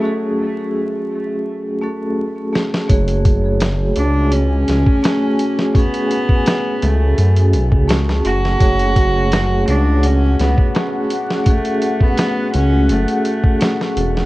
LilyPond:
<<
  \new Staff \with { instrumentName = "Ambient pad" } { \time 4/4 \key fis \minor \tempo 4 = 84 << { r1 | gis''1~ | gis''1 | fis''1~ |
fis''1 | } \\ { r1 | <a fis'>1~ | <a fis'>1~ | <a fis'>1~ |
<a fis'>1 | } >> }
  \new Staff \with { instrumentName = "Vibraphone" } { \time 4/4 \key fis \minor <a cis' fis' gis'>2~ <a cis' fis' gis'>8 <a cis' fis' a'>4 <a cis' fis' gis'>8 | <a fis' gis' cis''>2. <a cis' fis' gis'>4 | <a cis' fis' gis'>2. <a cis' fis' gis'>4 | <a fis' gis' cis''>2. <a cis' fis' gis'>4 |
<a cis' fis' gis'>2. <a cis' fis' gis'>4 | }
  \new Staff \with { instrumentName = "Cello" } { \time 4/4 \key fis \minor r1 | r4. d'8 cis'2 | b4. a4 r4 fis'8~ | fis'4. d'8 cis'8 b4 r8 |
a8. b8. cis'8 a4. r8 | }
  \new Staff \with { instrumentName = "Detuned saw bass" } { \clef bass \time 4/4 \key fis \minor r1 | fis,,4. cis,4 cis,16 r4 r16 | r4. cis,8 fis,8 b,,16 cis,8. fis,,8 | fis,,4. cis,4 cis,16 r4 r16 |
r4. cis,8 fis,,16 r4 r16 e,,8 | }
  \new DrumStaff \with { instrumentName = "Drums" } \drummode { \time 4/4 r4 r4 r4 r8 sn16 sn16 | <hh bd>16 hh16 <hh bd>8 <hh sn>8 hh8 hh8 <hh sn>16 bd16 <hh sn>8 hh16 sn16 | <hh bd>16 hh16 hh16 bd16 <hh sn>8 hh8 hh16 hh16 hh16 bd16 <hh sn>16 sn16 hh16 sn16 | <hh bd>16 hh16 <hh bd>8 <hh sn>8 hh8 hh8 <hh sn>16 bd16 <hh sn>8 hh16 sn16 |
<hh bd>16 hh16 hh16 bd16 <hh sn>8 hh8 hh16 hh16 hh16 bd16 <hh sn>16 sn16 hh16 sn16 | }
>>